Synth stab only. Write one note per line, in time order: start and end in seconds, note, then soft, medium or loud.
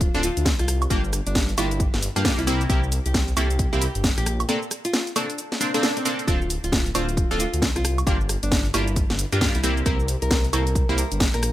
0.14 0.27 C4 medium
0.14 0.27 D4 medium
0.14 0.27 F4 medium
0.14 0.27 A4 loud
0.90 1.02 A#3 loud
0.90 1.01 D4 medium
0.90 1.01 F4 medium
0.90 1.01 G4 loud
1.58 1.69 A#3 medium
1.58 1.69 D4 medium
1.58 1.69 F4 medium
1.58 1.69 G4 loud
2.16 2.23 A#3 medium
2.16 2.23 D4 medium
2.16 2.23 F4 medium
2.16 2.23 G4 medium
2.25 2.41 A#3 loud
2.25 2.41 D4 medium
2.25 2.41 F4 medium
2.25 2.41 G4 loud
2.47 2.67 A#3 loud
2.47 2.67 C4 medium
2.47 2.67 E4 medium
2.47 2.67 G4 loud
2.70 2.81 A#3 medium
2.70 2.81 C4 medium
2.70 2.81 E4 medium
2.70 2.81 G4 medium
3.37 3.48 A#3 medium
3.37 3.48 C4 medium
3.37 3.48 E4 medium
3.37 3.48 A4 medium
3.73 3.86 A#3 medium
3.73 3.86 C4 medium
3.73 3.85 E4 medium
3.73 3.86 G4 loud
4.49 4.60 A#3 medium
4.49 4.60 C4 medium
4.49 4.60 D4 medium
4.49 4.60 A4 loud
5.16 5.27 A#3 medium
5.16 5.27 C4 medium
5.16 5.27 D4 medium
5.16 5.27 A4 medium
5.61 5.72 A#3 medium
5.61 5.72 C4 medium
5.61 5.72 D4 medium
5.61 5.72 C5 medium
5.74 6.03 A#3 loud
5.74 6.03 C4 medium
5.74 6.03 D4 medium
5.74 6.03 A4 loud
6.05 6.26 A#3 medium
6.05 6.26 C4 medium
6.05 6.26 D4 medium
6.05 6.26 A4 medium
6.28 6.39 C4 medium
6.28 6.39 D4 medium
6.28 6.39 F4 medium
6.28 6.39 A4 loud
6.95 7.06 C4 medium
6.95 7.06 D4 medium
6.95 7.06 F4 medium
6.95 7.06 C5 medium
7.31 7.44 C4 medium
7.31 7.44 D4 medium
7.31 7.44 F4 medium
7.31 7.44 A4 loud
8.07 8.18 A#3 medium
8.07 8.18 D4 medium
8.07 8.18 F4 medium
8.07 8.18 G4 loud
8.74 8.85 A#3 medium
8.74 8.85 D4 medium
8.74 8.85 F4 medium
8.74 8.85 G4 loud
9.32 9.40 A#3 medium
9.32 9.40 D4 medium
9.32 9.40 F4 medium
9.32 9.40 G4 medium
9.41 9.57 A#3 medium
9.41 9.57 D4 medium
9.41 9.57 F4 medium
9.41 9.57 G4 loud
9.64 9.84 A#3 loud
9.64 9.84 C4 medium
9.64 9.84 E4 medium
9.64 9.84 G4 loud
9.86 9.97 A#3 medium
9.86 9.97 C4 medium
9.86 9.97 E4 medium
9.86 9.97 G4 medium
10.53 10.64 A#3 medium
10.53 10.64 C4 medium
10.53 10.64 E4 medium
10.53 10.64 A4 medium
10.89 11.02 A#3 medium
10.89 11.02 C4 medium
10.89 11.02 E4 medium
10.89 11.02 G4 loud